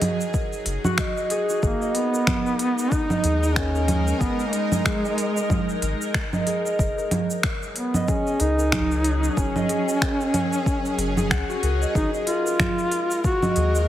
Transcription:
Already playing: synth drone F#3 D#4 G#4, harp G#4 A#4 D#5
0.02 open hi-hat, low conga
0.21 shaker
0.34 kick, shaker
0.53 shaker
0.66 analog synth bass F#1, open hi-hat
0.84 harp F#4, low conga, shaker
0.98 harp D#5, finger snap, kick, shaker
1.17 harp D#5, shaker
1.30 harp G#4, open hi-hat
1.49 harp F#4, shaker
1.63 analog synth bass G#1, synth drone G#3 A#4, duduk A#3, harp G#4, kick, shaker
1.82 harp D#5, shaker
1.95 duduk B3, harp A#4, open hi-hat
2.14 harp A#4, shaker
2.27 finger snap, kick, low conga, shaker
2.46 shaker
2.59 open hi-hat
2.78 shaker
2.91 duduk D#4, kick, shaker
3.10 harp D#5, low conga, shaker
3.24 analog synth bass D#2, harp G#4, open hi-hat
3.43 harp D#5, shaker
3.55 duduk C#4, harp A#4, finger snap, kick, shaker
3.75 harp A#4, shaker
3.88 open hi-hat, low conga
4.08 shaker
4.20 analog synth bass G#1, duduk B3, kick, shaker
4.40 shaker
4.47 duduk A#3
4.52 duduk G#3, open hi-hat
4.72 harp D#5, low conga, shaker
4.85 harp G#4, finger snap, kick, shaker
5.04 harp D#5, shaker
5.18 harp A#4, open hi-hat
5.36 harp A#4, shaker
5.50 kick, low conga, shaker
5.69 shaker
5.82 analog synth bass G#1, open hi-hat
6.02 shaker
6.14 finger snap, kick, shaker
6.33 harp D#5, low conga, shaker
6.47 harp G#4, open hi-hat
6.66 harp D#5, shaker
6.78 analog synth bass F#1, synth drone F#3 C#4 G#4, harp A#4, kick, shaker
6.98 harp A#4, shaker
7.11 open hi-hat, low conga
7.30 shaker
7.43 finger snap, kick, shaker
7.63 shaker
7.76 duduk B3, open hi-hat
7.94 harp D#5, low conga, shaker
8.08 duduk C#4, harp G#4, kick, shaker
8.27 harp D#5, shaker
8.40 analog synth bass C#2, duduk D#4, harp A#4, open hi-hat
8.59 harp A#4, shaker
8.72 finger snap, kick, low conga, shaker
8.91 shaker
9.04 open hi-hat
9.24 shaker
9.37 analog synth bass F#1, duduk C#4, kick, shaker
9.56 harp D#5, low conga, shaker
9.69 harp G#4, open hi-hat
9.88 harp D#5, shaker
10.02 finger snap, kick, shaker
10.20 harp A#4, shaker
10.34 open hi-hat, low conga
10.53 shaker
10.66 kick, shaker
10.86 shaker
10.98 analog synth bass F#1, open hi-hat
11.17 harp G#4, low conga, shaker
11.31 analog synth bass C#2, harp F#5, finger snap, kick, shaker
11.49 harp F#4, shaker
11.63 analog synth bass C#2, harp A#4, open hi-hat
11.82 harp D#5, shaker
11.95 analog synth bass G#1, synth drone G#3 D#4 A#4, duduk D#4, harp G#4, kick, shaker
12.14 harp D#5, shaker
12.27 duduk F4, harp A#4, open hi-hat
12.46 harp A#4, shaker
12.60 finger snap, kick, low conga, shaker
12.79 shaker
12.91 open hi-hat
13.11 shaker
13.24 duduk F#4, kick, shaker
13.42 harp D#5, low conga, shaker
13.56 analog synth bass D#2, harp G#4, open hi-hat
13.75 harp D#5, shaker

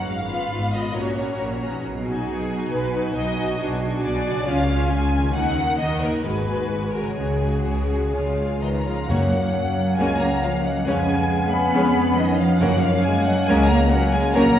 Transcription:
Already playing: harp G#2 B3 F4
0.01 harp B4
0.06 double bass section G#1, cello section G#2, violin section F5
0.28 viola section B3 F4, violin section B5
0.51 double bass section G#1, cello section G#2
0.73 viola section B3 F4, violin section D#5 B5
0.78 harp A#2
0.82 harp C#4
0.87 harp F#4
0.92 harp A#4, violin section C#5
0.96 double bass section A#1, cello section A#2, viola section C#4 F#4, violin section A#5
1.18 viola section C#4 F#4, violin section A#5
1.40 double bass section A#1, cello section A#2
1.61 viola section C#4 F#4, violin section A#5
1.66 harp B2
1.71 harp D#4
1.75 harp F#4 G#4
1.83 double bass section B1, cello section B2
2.05 viola section D#4 F#4, violin section G#5
2.27 double bass section B1, cello section B2, violin section G#4
2.50 viola section D#4 F#4, violin section G#5
2.71 double bass section B1, cello section B2, violin section B4
2.93 viola section D#4 F#4, violin section G#5
3.15 double bass section B1, cello section B2, violin section D#5
3.37 viola section D#4 F#4, violin section G#5
3.41 harp B2
3.46 harp D4
3.50 harp F#4
3.55 double bass section B1, cello section B2, harp G#4
3.59 viola section D4 F#4, violin section G#5
3.81 viola section D4 F#4, violin section G#5
4.03 double bass section B1, cello section B2, violin section D5
4.25 harp C#3, viola section D4 F#4, violin section G#5
4.34 harp C#4
4.38 harp F4
4.42 harp G#4, violin section G#5
4.47 double bass section C#2, cello section C#3, viola section C#4 F4, violin section F5
4.69 viola section C#4 F4, violin section G#5
4.92 double bass section C#2, cello section C#3, violin section G#5
5.13 viola section C#4 F4, violin section G#5
5.17 harp D#3
5.22 harp A#3
5.27 harp D#4
5.31 harp F#4, violin section F#5
5.35 double bass section D#2, cello section D#3, viola section A#3 D#4, violin section F#5
5.57 viola section A#3 D#4, violin section F#5
5.79 double bass section D#2, cello section D#3, violin section D#5
6.01 viola section A#3 D#4, violin section A#4 F#5
6.07 harp G#2
6.11 harp G#3
6.16 harp D#4
6.20 harp F#4, violin section B4
6.24 double bass section G#1, cello section G#2, viola section G#3 F#4, violin section G#5
6.47 viola section G#3 F#4, violin section G#5
6.70 double bass section G#1, cello section G#2
6.93 viola section G#3 F#4, violin section A#4 G#5
7.00 harp C#3
7.05 harp G#3
7.10 harp C#4
7.14 cello section C#3, harp F#4, violin section G#4 G#5
7.18 double bass section C#2, viola section G#3 F#4
7.42 viola section G#3 F#4, violin section G#5
7.66 double bass section C#2, cello section C#3, violin section C#5
7.91 viola section G#3 F#4
7.96 harp C#3
8.01 harp G#3
8.05 harp C#4
8.10 harp F4
8.14 double bass section C#2, cello section C#3, viola section G#3 F4, violin section F5
8.38 viola section G#3 F4
8.61 double bass section C#2, cello section C#3 D#3, french horn section D#3, flute B4, violin section D#5 A#5
8.85 cello section F3, french horn section F3, viola section G#3 F4, flute C#5, violin section F5
9.09 timpani F#2, harp F#2, double bass section F#2, french horn section F#3, cello section F#3, bassoon A#3, viola section A#3 C#4, clarinet C#4, violin section F#4 C#5 F#5, flute C#5
9.31 harp A#3
9.54 harp C#4
9.75 harp A#3
9.98 double bass section C#2, harp C#3, french horn section G#3, cello section G#3, viola section A#3 C#4, violin section F#4 C#5 G#5, flute F5
10.20 cello section A#3, harp A#3, french horn section A#3, flute F#5, violin section A#5
10.42 cello section F3, french horn section F3, harp C#4, flute C#5, violin section F5
10.63 cello section F#3, french horn section F#3, harp A#3, flute D#5, violin section F#5
10.84 harp F2, double bass section F2, cello section G#3, french horn section G#3, viola section G#3 C#4, bassoon B3, clarinet C#4, violin section B4 C#5 G#5, flute F5
11.06 harp G#3
11.29 harp C#4
11.51 harp G#3, cello section B3, french horn section B3, flute G#5, violin section B5
11.73 harp F2, double bass section F2, viola section G#3 C#4, violin section B4 C#5
11.95 harp F3
12.17 cello section D#3, french horn section D#3, harp C#4, flute B4, violin section D#5
12.39 cello section F3, french horn section F3, harp G#3, flute C#5, violin section F5
12.60 double bass section F#2, timpani F#2, harp F#2, cello section F#3, french horn section F#3, viola section A#3 C#4, bassoon A#3, clarinet C#4, violin section A#4 C#5 F#5, flute C#5
12.82 cello section F3, french horn section F3, harp A#3, flute C#5, violin section F5
13.03 french horn section G#3, cello section G#3, harp C#4, flute F5, violin section G#5
13.25 french horn section F#3, cello section F#3, harp A#3, flute D#5, violin section F#5
13.47 double bass section C#2, harp C#3, cello section G#3, french horn section G#3, viola section A#3 C#4, violin section A#4 C#5 G#5, flute F5
13.68 harp A#3, cello section A#3, flute F#5, violin section A#5
13.72 french horn section A#3
13.89 cello section F#3, bassoon A#3, harp C#4, clarinet C#4, flute C#5, violin section F#5
13.93 french horn section F#3
14.10 cello section G#3, bassoon G#3, harp A#3, flute F5, violin section G#5
14.15 french horn section G#3
14.33 double bass section A#1, harp A#2, bassoon F#3, viola section F#3 C#4, cello section A#3, french horn section A#3, clarinet C#4, violin section A#4 C#5 A#5, flute F#5
14.55 harp F#3

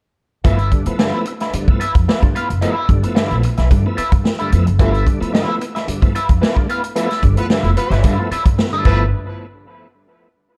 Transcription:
0.44 upright bass G1, tonewheel organ F3 A3 B3 E4, clean electric guitar F4 B4 E5, kick, closed hi-hat
0.59 closed hi-hat
0.72 tonewheel organ G2 D3, kick, closed hi-hat
0.86 tonewheel organ F3 A3 B3 E4, muted upright bass stroke, muted clean electric guitar stroke, closed hi-hat
0.99 tonewheel organ G2 D3, clean electric guitar F4 B4 E5, snare
1.13 tonewheel organ F3 A3 B3 E4
1.25 tonewheel organ B3 E4, muted clean electric guitar stroke, closed hi-hat
1.40 clean electric guitar F4 B4 E5, snare, closed hi-hat
1.53 tonewheel organ G2 D3, muted upright bass stroke, muted clean electric guitar stroke, closed hi-hat
1.68 upright bass G2, tonewheel organ F3 A3 B3 E4, kick
1.80 tonewheel organ B3 E4, clean electric guitar F4 B4 E5, closed hi-hat
1.95 upright bass F2, muted clean electric guitar stroke, kick, closed hi-hat
2.08 tonewheel organ B3 E4, clean electric guitar F4 B4 E5, snare
2.22 upright bass G2, tonewheel organ G2 D3, muted clean electric guitar stroke, kick, closed hi-hat
2.35 tonewheel organ B3 E4, clean electric guitar F4 B4 F5, closed hi-hat
2.49 upright bass F#1, muted clean electric guitar stroke, closed hi-hat
2.61 tonewheel organ F3 A3 B3 E4, clean electric guitar E4 B4 E5, closed hi-hat
2.72 clean electric guitar F4
2.89 upright bass G1, tonewheel organ G2 D3, kick, closed hi-hat
3.03 tonewheel organ F3 A3 B3 E4, muted clean electric guitar stroke, closed hi-hat
3.15 tonewheel organ G2 D3, clean electric guitar F4 B4 E5, snare
3.30 upright bass A#1, tonewheel organ F3 A3 B3 E4, closed hi-hat
3.43 tonewheel organ B3 E4, muted clean electric guitar stroke, closed hi-hat
3.57 upright bass B1, clean electric guitar F4 B4 E5, snare, closed hi-hat
3.70 upright bass G2, tonewheel organ G2 D3, muted clean electric guitar stroke, kick, closed hi-hat
3.86 tonewheel organ F3 A3 B3 E4
3.97 tonewheel organ B3 E4, clean electric guitar F4 B4 E5, muted upright bass stroke, closed hi-hat
4.12 upright bass G2, muted clean electric guitar stroke, kick, closed hi-hat
4.24 tonewheel organ B3 E4, muted clean electric guitar stroke, snare
4.39 tonewheel organ G2 D3, clean electric guitar F4 B4 E5, closed hi-hat
4.52 upright bass F2, tonewheel organ F3 A3 B3 E4, muted clean electric guitar stroke, closed hi-hat
4.67 upright bass F#1, muted clean electric guitar stroke, closed hi-hat
4.79 upright bass G1, tonewheel organ F3 A3 B3 E4, clean electric guitar F4 B4 E5, kick, closed hi-hat
4.94 closed hi-hat
5.06 tonewheel organ G2 D3, kick, closed hi-hat
5.20 tonewheel organ F3 A3 B3 E4, muted clean electric guitar stroke, muted upright bass stroke, closed hi-hat
5.33 tonewheel organ G2 D3, clean electric guitar F4 B4 E5, snare
5.47 tonewheel organ F3 A3 B3 E4
5.60 tonewheel organ B3 E4, muted clean electric guitar stroke, closed hi-hat
5.75 clean electric guitar F4 B4 E5, snare, closed hi-hat
5.87 tonewheel organ G2 D3, muted clean electric guitar stroke, muted upright bass stroke, closed hi-hat
6.01 upright bass G2, tonewheel organ F3 A3 B3 E4, kick, closed hi-hat
6.14 tonewheel organ B3 E4, clean electric guitar F4 B4 E5, closed hi-hat
6.29 upright bass F2, muted clean electric guitar stroke, kick, closed hi-hat
6.41 tonewheel organ B3 E4, clean electric guitar F4 B4 E5, snare
6.55 tonewheel organ G2 D3, muted clean electric guitar stroke, kick
6.68 tonewheel organ B3 E4, clean electric guitar F4 B4 F5, closed hi-hat
6.84 muted clean electric guitar stroke, closed hi-hat
6.95 tonewheel organ F3 A3 B3 E4, clean electric guitar F4 B4 E5, closed hi-hat
7.10 snare, closed hi-hat
7.23 upright bass G1, tonewheel organ G2 D3, kick, closed hi-hat
7.37 tonewheel organ F3 A3 B3 E4, horn section B3 F4 B4, muted clean electric guitar stroke, closed hi-hat
7.50 tonewheel organ G2 D3, clean electric guitar F4 B4 E5, snare
7.63 upright bass F1, tonewheel organ F3 A3 B3 E4, closed hi-hat
7.77 tonewheel organ B3 E4, horn section B3 F4 B4, muted clean electric guitar stroke, closed hi-hat
7.90 upright bass G1, clean electric guitar F4 B4 E5, snare, closed hi-hat
8.03 tonewheel organ G2 D3, upright bass G2, clean electric guitar F4 B4 E5, kick, closed hi-hat
8.18 tonewheel organ F3 A3 B3 E4, muted clean electric guitar stroke
8.31 tonewheel organ B3 E4, clean electric guitar F4 B4 E5, muted upright bass stroke, closed hi-hat
8.45 upright bass G2, muted clean electric guitar stroke, kick, closed hi-hat
8.58 tonewheel organ B3 E4, muted clean electric guitar stroke, snare
8.72 tonewheel organ G2 D3, clean electric guitar F4 B4 E5, closed hi-hat
8.85 upright bass G1, tonewheel organ F3 A3 B3 E4, horn section F3 E4 B4, clean electric guitar F4 B4 E5, kick, crash

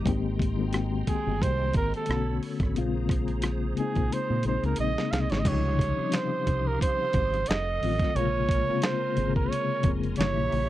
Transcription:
Already playing: tonewheel organ A#5
0.04 fingered electric bass G#1, reed electric piano D#3 G#3 A#3 C4, tonewheel organ G#3 G5 C6, kick, closed hi-hat
0.09 reed electric piano G4
0.39 kick, closed hi-hat
0.57 reed electric piano D#3 G#3 A#3 C4
0.62 reed electric piano F#4
0.68 reed electric piano G5
0.73 cross-stick, closed hi-hat
1.07 flugelhorn G#4, muted fingered electric bass stroke, kick, closed hi-hat
1.27 fingered electric bass G1
1.42 fingered electric bass C2, flugelhorn C5, kick, closed hi-hat
1.73 fingered electric bass G#1, flugelhorn A#4, kick, closed hi-hat
1.94 flugelhorn A4, closed hi-hat
2.06 fingered electric bass B1, reed electric piano D3 A3 B3, tonewheel organ A4 C#5 B5, closed hi-hat
2.10 reed electric piano C#4 F#4, cross-stick
2.43 open hi-hat
2.60 fingered electric bass G#1, kick, cross-stick, closed hi-hat
2.73 fingered electric bass A#1, reed electric piano C#3 G#3 A#3 C4, tonewheel organ G#4 C5 A#5, closed hi-hat
2.78 reed electric piano F4
3.09 kick, cross-stick, closed hi-hat
3.28 closed hi-hat
3.42 cross-stick, closed hi-hat
3.75 reed electric piano C#3 G#3 A#3 C4, muted fingered electric bass stroke, closed hi-hat
3.79 reed electric piano D#4, flugelhorn G#4
3.95 fingered electric bass A#1, kick, closed hi-hat
4.12 flugelhorn C5, closed hi-hat
4.30 fingered electric bass A#2
4.43 fingered electric bass A#1, reed electric piano C#3 G#3 A#3 C4, closed hi-hat
4.48 reed electric piano D#4, flugelhorn C5
4.63 fingered electric bass C#2, flugelhorn A#4, closed hi-hat
4.76 fingered electric bass A#1, reed electric piano C#3 G#3 A#3, tonewheel organ D#5 C6, closed hi-hat
4.80 reed electric piano C4 D#4, flugelhorn D#5
4.98 snare
5.11 fingered electric bass C2, flugelhorn F5, snare, closed hi-hat
5.20 flugelhorn D#5
5.30 fingered electric bass G#1, flugelhorn C#5, snare, closed hi-hat
5.39 flugelhorn D#5
5.44 fingered electric bass C#2, reed electric piano C3 C#3 F3 G3, tonewheel organ G4 F5 C6 D#6, flugelhorn C#5, kick, closed hi-hat, crash
5.49 reed electric piano D#4
5.79 kick, closed hi-hat
5.97 reed electric piano F3 G3 C4 C#4, muted fingered electric bass stroke
6.02 reed electric piano D#4
6.12 flugelhorn C5, finger snap, snare, closed hi-hat
6.47 fingered electric bass C2, kick, closed hi-hat
6.67 flugelhorn A#4
6.81 flugelhorn C5, kick, closed hi-hat
7.13 fingered electric bass G#1, kick, closed hi-hat
7.34 closed hi-hat
7.46 fingered electric bass F1, tonewheel organ A4 F#5, flugelhorn D#5, closed hi-hat
7.51 finger snap, snare
7.80 fingered electric bass A1, reed electric piano D#3 F#3 A3 C4, open hi-hat
7.85 reed electric piano F4
7.99 kick, snare, closed hi-hat
8.14 fingered electric bass A#1, reed electric piano C3 C#3 G#3 A#3, tonewheel organ A#4 G#5 A#5 C6, flugelhorn C#5, closed hi-hat
8.19 reed electric piano F4
8.49 kick, closed hi-hat
8.66 reed electric piano C#3 G#3 A#3 C4, muted fingered electric bass stroke
8.71 reed electric piano F4
8.82 flugelhorn C5, finger snap, snare, closed hi-hat
9.15 fingered electric bass G#1, reed electric piano C3 G#3 A#3 C4, closed hi-hat
9.20 reed electric piano C#3 G#4
9.35 flugelhorn A#4, kick
9.50 flugelhorn C#5, closed hi-hat
9.83 fingered electric bass F1, reed electric piano C#3 G#3 A#3 C4, kick, closed hi-hat
9.88 reed electric piano G#4
10.03 closed hi-hat
10.16 fingered electric bass G1, reed electric piano C#3 E3 G3, tonewheel organ G4 E5 A#5 C#6, flugelhorn C#5, closed hi-hat
10.20 reed electric piano A#3 D#4, finger snap, snare
10.28 reed electric piano E4
10.37 fingered electric bass A#1
10.52 fingered electric bass A#1, open hi-hat

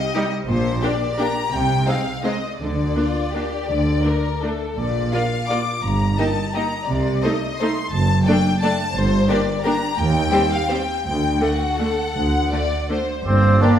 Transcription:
Already playing: violin section D#5
0.14 viola section G3 D#4, violin section G4
0.48 double bass section A#1, cello section A#2, violin section C5
0.83 viola section A#3 D4, violin section G4 D5
1.19 viola section A#3 D4, violin section G4 A#5
1.52 double bass section C2, cello section C3, violin section G5
1.86 viola section G#3 C4, violin section D#4 C5 F5
2.23 viola section G#3 C4, violin section D#4 C5 D#5
2.58 double bass section D2, cello section D3, violin section D5
2.95 viola section A#3 D4, violin section F4
3.32 viola section A#3 D4, violin section G4
3.67 double bass section D2, cello section D3, violin section D5
4.04 viola section A3 D4, violin section A#4
4.42 viola section A3 D4, violin section A4
4.76 double bass section A#1, cello section A#2, violin section D5
5.13 viola section A#3 F4, violin section F4 D5 F5
5.49 viola section A#3 F4, violin section F4 D5 D6
5.82 double bass section G1, cello section G2, violin section A#5
6.18 viola section A#3 D#4, violin section G4 D#5 A5
6.54 viola section A#3 D#4, violin section G4 D#5 A#5
6.88 double bass section C2, cello section C3, violin section D5
7.23 viola section A3 D#4, violin section A4 C5 D#5
7.58 viola section A3 D#4, violin section A4 C5 C6
7.92 double bass section F#1, cello section F#2, violin section A5
8.26 viola section A3 D4, violin section A4 D5 G5
8.62 viola section A3 D4, violin section A4 D5 A5
8.96 double bass section G1, cello section G2, violin section C5
9.29 viola section A#3 D4, violin section G4 A#4 D5
9.65 viola section A#3 D4, violin section G4 A#4 A#5
9.98 double bass section D#2, cello section D#2, violin section G5
10.32 viola section G3 C4, violin section G4 C5
10.52 violin section F5
10.69 viola section G3 C4, violin section G4 C5 G5
11.04 double bass section D2, cello section D2, violin section G5
11.41 viola section D3 A3, violin section F#4 F#5
11.79 viola section D3 A3, violin section A4
12.15 cello section D2, double bass section D2, violin section F#5
12.52 viola section D3 A3, violin section D5
12.90 viola section D3 A3, violin section C5
13.25 double bass section G1, cello section G2, clarinet A#3, trumpet C4, violin section C5, flute C5, oboe D5
13.61 violin section A#3 G4 D5, viola section A#3, french horn section A#3 D4, trumpet D4, flute D5

